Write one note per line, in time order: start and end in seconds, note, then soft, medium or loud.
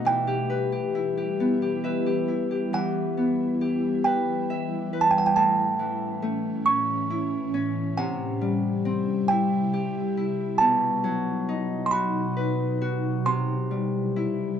0.00 0.11 B2 medium
0.00 2.94 A3 soft
0.00 0.10 B3 medium
0.00 0.11 D#4 soft
0.00 0.33 F#4 medium
0.00 0.49 B4 medium
0.05 2.72 E3 medium
0.05 2.71 E3 medium
0.05 2.70 G3 medium
0.05 2.71 E4 medium
0.05 1.80 G5 medium
0.27 0.72 G4 medium
0.50 1.83 B4 medium
0.72 1.17 G4 medium
0.95 2.28 E4 medium
1.17 1.62 G4 medium
1.40 3.17 B3 medium
1.62 2.06 G4 medium
1.84 3.89 B4 soft
1.84 3.56 E5 medium
2.06 2.50 G4 soft
2.28 4.89 E4 soft
2.51 3.61 G4 soft
2.73 5.41 E3 medium
2.73 5.34 E3 medium
2.73 5.34 G3 medium
2.73 5.34 E4 medium
2.73 4.10 F#5 medium
3.17 6.28 B3 soft
3.61 5.96 G4 medium
4.04 4.93 B4 medium
4.04 4.96 G5 medium
4.50 6.22 E5 medium
4.93 6.98 B4 medium
5.01 5.10 A5 medium
5.11 5.19 G5 medium
5.18 5.27 F#5 medium
5.26 5.36 G5 medium
5.36 8.03 A2 medium
5.36 7.96 A2 medium
5.36 7.96 E3 medium
5.36 7.96 C#4 medium
5.36 6.71 A5 medium
5.79 8.03 E3 soft
6.22 9.55 A3 medium
6.66 7.53 C#4 medium
6.66 7.61 C#6 medium
7.10 9.30 E4 soft
7.54 8.04 C#4 medium
7.97 10.65 C3 medium
7.97 10.58 C3 medium
7.97 10.58 G3 medium
7.97 10.58 E4 medium
7.97 9.25 F#5 medium
8.41 10.65 G3 medium
8.85 10.66 C4 medium
9.28 10.17 E4 medium
9.28 10.64 G5 medium
9.73 11.10 G4 medium
10.17 11.55 E4 medium
10.58 13.31 B2 medium
10.58 13.24 B2 medium
10.58 13.24 F#3 medium
10.58 13.24 D#4 medium
10.58 11.80 A5 medium
11.04 13.31 F#3 medium
11.49 14.22 D#4 soft
11.86 11.93 C6 medium
11.91 12.81 F#4 medium
11.91 12.88 B5 medium
12.37 13.31 B4 medium
12.81 13.77 F#4 medium
13.25 14.60 C3 medium
13.25 14.60 G3 medium
13.25 14.60 E4 medium
13.25 14.60 C6 medium
13.71 14.60 G3 soft
14.16 14.60 E4 medium